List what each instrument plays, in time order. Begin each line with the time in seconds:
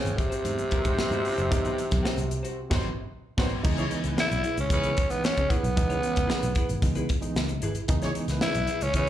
Already playing: tenor saxophone C#3, clean electric guitar C4 F#4 C5
0.05 picked electric bass G#1, closed hi-hat, shaker
0.17 tenor saxophone C3, reed electric piano B3 C4, kick, closed hi-hat
0.30 clean electric guitar C4 F#4 C5, closed hi-hat, shaker
0.44 picked electric bass G#2, reed electric piano D#3 F#3 B3 C4, closed hi-hat, shaker
0.58 muted clean electric guitar stroke, closed hi-hat, shaker
0.71 clean electric guitar C4 F#4 B4, muted picked electric bass stroke, kick, closed hi-hat, shaker
0.85 picked electric bass G#2, horn section D#4 F#4 C5, muted clean electric guitar stroke, kick, closed hi-hat, shaker
0.97 reed electric piano D#3 F#3 B3 C4, clean electric guitar C4 F#4 B4, snare, shaker
1.11 picked electric bass G#2, horn section D#4 F#4 C5, closed hi-hat, shaker
1.24 reed electric piano B3 C4, open hi-hat
1.38 picked electric bass F#1, clean electric guitar C4 F#4 C5, closed hi-hat, shaker
1.50 picked electric bass G#1, reed electric piano D#3 F#3 B3 D#4, muted clean electric guitar stroke, kick, closed hi-hat, shaker
1.64 clean electric guitar C4 F#4 B4, closed hi-hat, shaker
1.78 muted clean electric guitar stroke, closed hi-hat, shaker
1.91 picked electric bass B1, reed electric piano D#3 F#3 B3 C4, muted clean electric guitar stroke, kick, snare, closed hi-hat, shaker
2.03 clean electric guitar C4 F#4 C5, muted picked electric bass stroke, snare, shaker
2.18 picked electric bass C2, closed hi-hat, shaker
2.30 reed electric piano B3 C4, muted clean electric guitar stroke, closed hi-hat, shaker
2.43 clean electric guitar C4 F#4 C5, closed hi-hat, shaker
2.70 picked electric bass G#1, reed electric piano D#3 F#3 B3 C4, clean electric guitar C4 F#4 B4, horn section D#4 F#4 C5, kick, snare, crash
3.37 picked electric bass G#1, reed electric piano D#3 F#3 B3 C4, clean electric guitar C4 F#4 B4, horn section D#4 F#4 C5, kick, snare, crash
3.63 picked electric bass C#2, reed electric piano E3 G#3 B3 D#4, muted clean electric guitar stroke, kick, crash, shaker
3.77 horn section E4 G#4 C#5, clean electric guitar E4 G#4 C#5, closed hi-hat, shaker
3.90 reed electric piano E3 G#3 B3 D#4, muted clean electric guitar stroke, closed hi-hat
4.04 picked electric bass C#2, horn section E4 G#4 B4, muted clean electric guitar stroke, closed hi-hat, shaker
4.17 clean electric guitar E4 G#4 B4, tenor saxophone E4, snare, shaker
4.31 picked electric bass B1, muted clean electric guitar stroke, closed hi-hat, shaker
4.43 reed electric piano B3 F#4, clean electric guitar E4 G#4 B4, closed hi-hat, shaker
4.57 picked electric bass C#2, tenor saxophone C#4, muted clean electric guitar stroke, closed hi-hat, shaker
4.70 picked electric bass C#2, reed electric piano E3 G#3 B3 D#4, tenor saxophone C#4, horn section E4 G#4 B4, muted clean electric guitar stroke, kick, closed hi-hat, shaker
4.83 clean electric guitar E4 G#4 B4, closed hi-hat, shaker
4.97 muted clean electric guitar stroke, kick, closed hi-hat, shaker
5.09 reed electric piano E3 G#3 B3 D#4, tenor saxophone B3, muted clean electric guitar stroke, closed hi-hat, shaker
5.24 tenor saxophone C#4, snare, shaker
5.37 picked electric bass C#3, muted clean electric guitar stroke, kick, closed hi-hat, shaker
5.49 reed electric piano B3 D#4, tenor saxophone B3, clean electric guitar E4 G#4 B4, kick, closed hi-hat
5.63 picked electric bass B1, muted clean electric guitar stroke, closed hi-hat, shaker
5.76 picked electric bass C#2, reed electric piano E3 G#3 B3 D#4, kick, closed hi-hat, shaker
5.90 clean electric guitar E4 G#4 C#5, closed hi-hat, shaker
6.02 reed electric piano E3 G#3 B3 C#4, closed hi-hat
6.16 picked electric bass C#2, muted clean electric guitar stroke, kick, closed hi-hat, shaker
6.27 clean electric guitar E4 G#4 B4, snare, shaker
6.41 picked electric bass B1, muted clean electric guitar stroke, closed hi-hat, shaker
6.55 reed electric piano B3 D#4, clean electric guitar E4 G#4 B4, kick, closed hi-hat, shaker
6.69 picked electric bass G#1, muted clean electric guitar stroke, closed hi-hat, shaker
6.82 picked electric bass C#2, reed electric piano E3 G#3 B3 D#4, muted clean electric guitar stroke, kick, closed hi-hat, shaker
6.95 clean electric guitar E4 G#4 B4, closed hi-hat, shaker
7.09 muted clean electric guitar stroke, kick, closed hi-hat, shaker
7.21 reed electric piano E3 G#3 B3 D#4, muted clean electric guitar stroke, closed hi-hat, shaker
7.36 picked electric bass C#2, snare, shaker
7.49 muted clean electric guitar stroke, closed hi-hat, shaker
7.62 picked electric bass G#1, reed electric piano B3 D#4, clean electric guitar E4 G#4 B4, closed hi-hat
7.75 muted clean electric guitar stroke, closed hi-hat, shaker
7.88 picked electric bass C#2, reed electric piano E3 G#3 B3 D#4, muted clean electric guitar stroke, kick, closed hi-hat, shaker
8.02 horn section E4 G#4 C#5, clean electric guitar E4 G#4 C#5, snare, closed hi-hat, shaker
8.14 reed electric piano E3 G#3 B3 D#4, muted clean electric guitar stroke, closed hi-hat
8.27 picked electric bass C#2, horn section E4 G#4 B4, muted clean electric guitar stroke, snare, closed hi-hat, shaker
8.41 tenor saxophone E4, clean electric guitar E4, snare, shaker
8.45 clean electric guitar G#4 B4
8.54 picked electric bass B1, muted clean electric guitar stroke, closed hi-hat, shaker
8.67 reed electric piano B3 D#4, clean electric guitar E4 G#4 B4, closed hi-hat, shaker
8.81 picked electric bass C#2, tenor saxophone C#4, muted clean electric guitar stroke, closed hi-hat, shaker
8.94 picked electric bass C#2, reed electric piano E3 G#3 B3 D#4, tenor saxophone C#4, horn section E4 G#4 B4, muted clean electric guitar stroke, kick, closed hi-hat, shaker